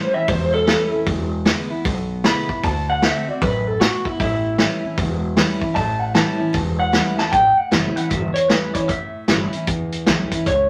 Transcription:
Already playing: A2 E3 G3 C#4 E4 C5
0.13 C#4 E4 E5, muted upright bass stroke
0.28 E1 E2 C5, kick, open hi-hat
0.54 A4
0.67 E3 G3 C#4 E4 A4, snare, open hi-hat
0.91 C#4 E4, muted upright bass stroke
1.06 E1 E2, kick, open hi-hat
1.45 D3 G#3 B3 E4, snare, open hi-hat
1.70 B3 E4, muted upright bass stroke
1.85 B1 B2, kick, open hi-hat
2.24 D3 G#3 B3 E4 B5, snare, open hi-hat
2.49 B3 E4, muted upright bass stroke, kick
2.63 D2 D3 A5, kick, open hi-hat
2.90 F#5
3.02 D3 A3 C4 F#4 E5, snare, open hi-hat
3.27 C4 F#4 D5, muted upright bass stroke
3.41 A1 F#2 B4, kick, open hi-hat
3.67 A4
3.80 B2 F#4, snare, open hi-hat
4.05 E4, muted upright bass stroke, kick
4.20 A1 A2 E4, kick, open hi-hat
4.58 E3 G3 C#4 E4, snare, open hi-hat
4.84 C#4 E4, muted upright bass stroke
4.97 E1 E2, kick, open hi-hat
5.37 E3 G3 C#4 E4, snare, open hi-hat
5.61 C#4 E4, muted upright bass stroke, kick
5.75 A1 A2 A5, kick, open hi-hat
5.99 F#5
6.14 E3 G3 C#4 E4 A5, snare, open hi-hat
6.38 C#4 E4, muted upright bass stroke
6.53 E1 E2, kick, open hi-hat
6.79 F#5
6.92 E3 G3 C#4 E4, snare, open hi-hat
7.16 C#4 E4 A5, muted upright bass stroke, snare
7.32 A1 A2 G5, kick, closed hi-hat
7.57 F#5, muted upright bass stroke
7.71 F#1 E3 G3 C#4 E4 E5, snare, closed hi-hat
7.96 C#4 E4 F#5, muted upright bass stroke, closed hi-hat
8.09 G1 E2 E5, kick, closed hi-hat
8.34 C#5, muted upright bass stroke, closed hi-hat
8.48 G#1 E3 G3 C#4 E4 B4, snare, closed hi-hat
8.74 C#4 E4 C#5, kick, closed hi-hat
8.88 A1 A2 E5, kick, closed hi-hat
9.14 muted upright bass stroke
9.28 G1 E3 G3 C#4 E4, snare, closed hi-hat
9.52 C#4 E4, muted upright bass stroke, closed hi-hat
9.67 A1 E2, kick, closed hi-hat
9.92 muted upright bass stroke, closed hi-hat
10.06 B1 E3 G3 C#4 E4, snare, closed hi-hat
10.31 C#4 E4, muted upright bass stroke, kick, closed hi-hat
10.46 C#2 A2 C#5, kick, closed hi-hat

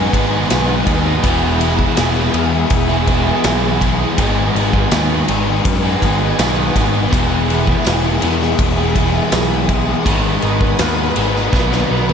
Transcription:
Already playing: G#2 D#3 G#3 B3 D#4 G#4 B4 F#5 G#5 D#6
0.13 G#1 G#3 B3 D#4 G#4, kick, ride
0.31 G#3 B3 D#4 G#4
0.48 B1 G#2 D#3 G#3 B3 D#4 G#4, snare, ride, tambourine
0.67 G#3 B3 D#4 G#4
0.86 D#2 G#3 B3 D#4 G#4, kick, ride
1.05 G#3 B3 D#4 G#4
1.23 E1 E2 B2 E3 G#3 B3 E4 G#4 E5, kick, ride
1.60 G#3 B3 E4 G#4, ride
1.77 G#3 B3 E4 G#4, kick
1.97 E1 E2 E3 G#3 B3 E4 G#4, snare, ride, tambourine
2.14 G#3 B3 E4 G#4
2.33 E2 B2 E3 G#3 B3 E4 G#4, muted overdriven electric guitar stroke, ride
2.37 E2
2.52 G#3 B3 E4 G#4
2.70 E1, kick, ride
2.89 G#3 B3 E4 G#4
3.07 G#3 B3 E4 G#4, kick, ride
3.26 G#3 B3 E4 G#4
3.44 B1 E2 E3 G#3 B3 E4 G#4, snare, ride, tambourine
3.62 G#3 B3 E4 G#4
3.81 G#3 B3 E4 G#4, kick, ride
4.01 G#3 B3 E4 G#4
4.18 G#1 G#2 D#3 G#3 B3 D#4 G#4 B4 F#5 G#5, kick, ride
4.55 G#1 G#3 B3 D#4, ride
4.59 G#4
4.73 G#3 B3 D#4 G#4, kick
4.91 D#2 G#2 D#3 G#3, snare, ride, tambourine
4.95 B3 D#4 G#4
5.11 G#3 B3 D#4 G#4
5.28 G#1 G#2 D#3 G#3 B3 D#4 G#4, muted overdriven electric guitar stroke, ride
5.48 G#3 B3 D#4 G#4
5.65 F#2, kick, ride
5.84 G#3 B3 D#4 G#4
6.02 G#1 G#3 B3 D#4 G#4, kick, ride
6.21 G#3 B3 D#4 G#4
6.39 B1 G#2 D#3 G#3 B3 D#4 G#4, snare, ride, tambourine
6.56 G#3 B3 D#4 G#4
6.75 G#1 G#3 B3 D#4 G#4, kick, ride
6.93 G#3 B3 D#4 G#4
7.10 E1 E2 B2 E3 G#3 B3 G#4 E5 D#6, kick
7.14 E4 G#4, ride
7.50 G#3 B3 E4 G#4, ride
7.66 G#3 B3 E4 G#4, kick
7.84 E1 E2 E3 G#3 B3 E4 G#4, snare, ride, tambourine
8.04 G#3 B3 E4 G#4
8.20 E2 B2 E3 G#3 B3 E4, muted overdriven electric guitar stroke, ride
8.25 E2 G#4
8.42 G#3 B3 E4 G#4, snare
8.59 E1, kick, ride
8.78 G#3 B3 E4 G#4
8.96 G#3 B3 E4 G#4, kick, ride
9.13 G#3 B3 E4 G#4
9.31 B1 E2 E3 G#3 B3 E4 G#4, snare, ride, tambourine
9.49 G#3 B3 E4 G#4
9.67 G#3 B3 E4 G#4, kick, ride
9.87 G#3 B3 E4 G#4
10.05 G#1 G#2 D#3 G#3 B3 D#4 B4 F#5 G#5, kick, ride
10.41 G#1 G#3 B3 D#4 B4, ride
10.60 G#3 B3 D#4 B4, kick
10.77 D#2 G#2 D#3 G#3 B3 D#4 B4, snare, ride, tambourine
10.97 G#3 B3 D#4 B4
11.14 G#1 G#3 B3 D#4 B4, muted overdriven electric guitar stroke, ride
11.19 G#2 D#3
11.33 G#3 B3 D#4 B4, snare
11.51 B1 B2 D#3 F#3 B3 D#4 B4 A#5, kick, snare
11.70 F#3 B3 D#4 B4, snare
11.90 B1 F#3 B3 D#4 B4
12.08 B3 D#4 B4, high tom

